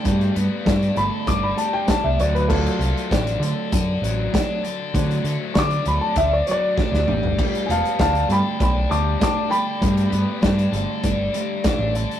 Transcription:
<<
  \new Staff \with { instrumentName = "Upright piano" } { \time 4/4 \key g \major \tempo 4 = 98 <d'' g''>8 r4 b''8 d'''16 b''16 a''16 g''16 a''16 e''16 d''16 b'16 | <f' a'>2 r2 | r4 <cis''' d'''>8 b''16 a''16 e''16 d''16 <cis'' d''>4 r8 | r8 <f'' aes'' a''>8 <f'' a''>8 <g'' b''>8 <g'' b''>8 <a'' d'''>8 <a'' d'''>8 <g'' b''>8~ |
<g'' b''>2~ <g'' b''>8 r4. | }
  \new Staff \with { instrumentName = "Overdriven electric guitar" } { \time 4/4 \key g \major <g d' a'>8 b8 d'8 a'8 d'8 g8 d'8 fis8 | fis8 a8 d'8 a'8 d'8 fis8 d'8 a'8 | fis8 a8 d'8 a'8 d'8 fis8 d'8 g8 | g8 b8 d'8 a'8 d'8 g8 d'8 a'8 |
g8 b8 d'8 a'8 d'8 g8 d'8 a'8 | }
  \new Staff \with { instrumentName = "Clean electric guitar" } { \clef bass \time 4/4 \key g \major <g a d'>8 <g a>8 <g a>8 <g a d'>8 <g a>8 <g a>8 <g a d'>8 <d fis a>8 | <d fis a>8 <d fis>8 <d fis>8 <d fis a>8 <d fis>8 <d fis>8 <d fis a>8 <d fis>8 | <d fis a>8 <d fis>8 <d fis>8 <d fis a>8 <d fis>8 <d fis>8 <d fis a>8 <g a d'>8 | <g a d'>8 <g a>8 <g a>8 <g a d'>8 <g a>8 <g a>8 <g a d'>8 <g a>8 |
<g a d'>8 <g a>8 <g a>8 <g a d'>8 <g a>8 <g a>8 <g a d'>8 <g a>8 | }
  \new Staff \with { instrumentName = "Picked electric bass" } { \clef bass \time 4/4 \key g \major g,8 g,16 r16 g,8 g,,16 r16 g,,8 r8. c,16 d,8~ | d,8 c,16 r16 a,,8 d16 r16 fis,8 a,,8 r4 | d8 d16 r16 d8 d,16 r16 d,8 r8. d,16 a,,16 g,,16 | r8 e,,16 r16 d,8 g,16 r16 b,,8 d,8 r4 |
g,8 g,16 r16 g,8 g,,16 r16 g,,8 r8. a,,8 r16 | }
  \new DrumStaff \with { instrumentName = "Drums" } \drummode { \time 4/4 <hh bd>16 hh16 hh8 <hh bd sn>16 hh16 hh8 <hh bd>8 hh8 <hh bd sn>8 hh16 hh16 | <cymc bd>16 hh16 hh16 hh16 <hh bd sn>16 hh16 hh8 <hh bd>8 hh8 <hh bd sn>8 hh8 | <hh bd>16 hh16 hh8 <hh bd sn>16 hh16 hh8 <hh bd>8 hh8 <bd sn>16 sn16 toml16 tomfh16 | <cymc bd>16 hh16 hh16 hh16 <hh bd sn>16 hh16 hh8 <hh bd>8 hh8 <hh bd sn>8 hh8 |
<hh bd>16 hh16 hh8 <hh bd sn>16 hh16 hh8 <hh bd>8 hh8 <hh bd sn>8 hh16 hh16 | }
>>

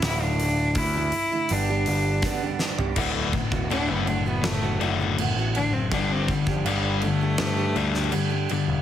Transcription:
<<
  \new Staff \with { instrumentName = "Cello" } { \time 4/4 \key d \major \tempo 4 = 82 e'16 d'8. e'4 d'4. r8 | r4 d'16 b16 d'16 b16 a8 r4 d'16 c'16 | d'16 c'16 g16 f16 g8 a2 r8 | }
  \new Staff \with { instrumentName = "Steel-string acoustic guitar" } { \time 4/4 \key d \major <d, a, d a e'>8 <a, d a e'>8. <d a e'>8 <d a e'>16 <g, d g b d' g'>16 <g b d' g'>16 <g b d' g'>8 <g, d g b d' g'>16 <g b d' g'>16 <g b d' g'>16 <g b d' g'>16 | <d, a, d a b fis'>8 <d a b fis'>16 <d a b fis'>16 <d, a, d a b fis'>8 <d a b fis'>16 <d a b fis'>8 <d a b fis'>16 <d a b fis'>16 <d a b fis'>16 <d, a, d a b fis'>16 <d a b fis'>16 <d a b fis'>8 | <g, d g d' g'>8 <d g d' g'>16 <g d' g'>16 <g, d g d' g'>8 <d g d' g'>16 <g d' g'>8 <g d' g'>16 <d g d' g'>16 <g d' g'>16 <g, d g d' g'>16 <g d' g'>16 <d g d' g'>8 | }
  \new Staff \with { instrumentName = "Overdriven electric guitar" } { \clef bass \time 4/4 \key d \major r1 | <d, a, d>8 <d, a,>8 <d, a, d>8 <d, a,>8 <d, a,>8 <d, a, d>8 <d, a,>8 <d, a,>8 | <g, d g>8 <g, d>8 <g, d g>8 <g, d>8 <g, d>8 <g, d g>8 <g, d>8 <g, d>8 | }
  \new Staff \with { instrumentName = "Picked electric bass" } { \clef bass \time 4/4 \key d \major d,,4 d,8 r8 g,,8 g,,8 r4 | d,,8 r16 d,,8 fis,,4~ fis,,16 fis,,8. a,,8 fis,,16 | g,,4 g,,4 g,8 d,8 r8. e,,16 | }
  \new DrumStaff \with { instrumentName = "Drums" } \drummode { \time 4/4 <hho sn>8 hho8 <hho bd>8 hho8 hho8 hho8 <hho bd sn>8 sn16 tomfh16 | <cymc bd>8 <cymc bd>16 bd16 cymc8 cymc8 <cymc sn>8 cymc8 cymc8 cymc8 | <cymc bd>8 <cymc bd>16 bd16 cymc8 cymc8 <cymc sn>8 cymc16 sn16 cymc8 cymc8 | }
>>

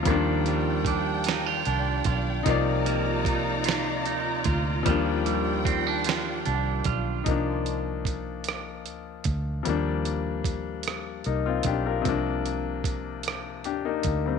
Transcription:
<<
  \new Staff \with { instrumentName = "String section" } { \time 6/8 \key c \minor \tempo 4. = 50 << { <d'' g''>2. | <ees' bes''>2. | g''2. | r2. |
r2. | r2. | } \\ { f'2. | f'2.~ | f'2. | r2. |
r2. | r2. | } >> }
  \new Staff \with { instrumentName = "Clean electric guitar" } { \time 6/8 \key c \minor <ees f'>8 g8 d'8 ees'16 f'16 d'8 f'8 | <c f'>8 bes8 ees'8 f'8 ees'8 f'8 | <ees f'>8 g8 c'16 d'16 f'8 d'8 f'8 | r2. |
r2. | r2. | }
  \new Staff \with { instrumentName = "Grand piano" } { \time 6/8 \key c \minor r2. | r2. | r2. | r2. |
r2 <bes ees'>16 <c' f'>16 <d' g'>16 <f' bes'>16~ | <f' bes'>16 r4. r16 <d' g'>16 <bes ees'>8 <g c'>16 | }
  \new Staff \with { instrumentName = "Grand piano" } { \time 6/8 \key c \minor <f g bes d'>2. | <f bes ees' d''>2. | <f g bes d'>2. | <f bes d' ees'>2. |
<f g bes d'>2. | <c f bes d'>2. | }
  \new Staff \with { instrumentName = "Fingered electric bass" } { \clef bass \time 6/8 \key c \minor ees,2 c,8 ces,8 | c,2 d,8 d,8 | ees,2 c,8 ces,8 | c,2 d,8 d,8 |
ees,2 c,8 ces,8 | c,2 d,8 d,8 | }
  \new DrumStaff \with { instrumentName = "Drums" } \drummode { \time 6/8 <hh bd>8 hh8 <hh bd>8 <hh sn>8 hh8 <hh bd>8 | <hh bd>8 hh8 <hh bd>8 <hh sn>8 hh8 <hh bd>8 | <hh bd>8 hh8 <hh bd>8 <hh sn>8 hh8 <hh bd>8 | <hh bd>8 hh8 <hh bd>8 <hh ss>8 hh8 <hh bd>8 |
hh8 hh8 <hh bd>8 <hh ss>8 hh8 <hh bd>8 | <hh bd>8 hh8 <hh bd>8 <hh ss>8 hh8 <hh bd>8 | }
>>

